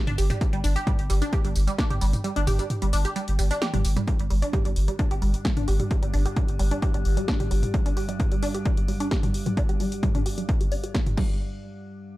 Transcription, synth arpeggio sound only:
0.07 D4
0.18 G4
0.30 G3
0.53 G3
0.64 D4
0.76 G4
0.87 G3
1.10 G3
1.22 D4
1.33 G4
1.45 G3
1.67 G3
1.78 D4
1.90 G4
2.01 G3
2.24 G3
2.36 D4
2.47 G4
2.59 G3
2.82 G3
2.93 D4
3.05 G4
3.16 G3
3.39 G3
3.51 D4
3.62 G4
3.74 G3
3.97 G3
4.08 G3
4.30 G3
4.42 D4
4.53 G4
4.65 G3
4.88 G3
4.99 D4
5.11 G4
5.22 G3
5.45 G3
5.57 D4
5.68 G4
5.80 G3
6.03 G3
6.14 D4
6.26 G4
6.37 G3
6.59 G3
6.71 D4
6.82 G4
6.94 G3
7.17 G3
7.28 D4
7.40 G4
7.51 G3
7.74 G3
7.86 D4
7.97 G4
8.09 G3
8.32 G3
8.43 D4
8.55 G4
8.65 G3
8.88 G3
9.00 D4
9.11 G4
9.23 G3
9.46 G3
9.57 D4
9.69 G4
9.80 G3
10.03 G3
10.15 D4
10.26 G4
10.38 G3
10.61 G3
10.72 D4
10.84 G4
10.95 G3
11.17 G3

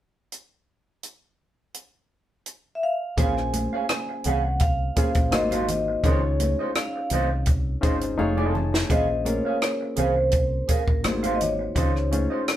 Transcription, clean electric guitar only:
3.17 G#4 C#5 F5
3.53 muted clean electric guitar stroke
3.73 G#4 C#5 F5
4.09 muted clean electric guitar stroke
4.25 G#4 C#5 F5
4.45 muted clean electric guitar stroke
4.62 muted clean electric guitar stroke
4.96 G#4 C#5 F5
5.16 muted clean electric guitar stroke
5.33 muted clean electric guitar stroke
5.52 F#4 C5 F5
5.88 muted clean electric guitar stroke
6.04 F4 C5 D#5
6.40 muted clean electric guitar stroke
6.59 F4 C5 D#5
6.96 muted clean electric guitar stroke
7.12 F4 C5 D#5
7.31 muted clean electric guitar stroke
7.48 muted clean electric guitar stroke
7.83 F4 C5 D#5
8.02 muted clean electric guitar stroke
8.18 muted clean electric guitar stroke
8.37 F4 A4 D#5
8.54 muted clean electric guitar stroke
8.73 muted clean electric guitar stroke
8.90 G#4 C#5 F5
9.25 muted clean electric guitar stroke
9.45 G#4 C#5 F5
9.81 muted clean electric guitar stroke
9.96 G#4 C#5 F5
10.16 muted clean electric guitar stroke
10.33 muted clean electric guitar stroke
10.68 G#4 C#5 F5
10.87 muted clean electric guitar stroke
11.04 muted clean electric guitar stroke
11.23 F#4 C5 F5
11.39 muted clean electric guitar stroke
11.59 muted clean electric guitar stroke
11.75 F4 C5 D#5
12.11 muted clean electric guitar stroke
12.30 F4 C5 D#5

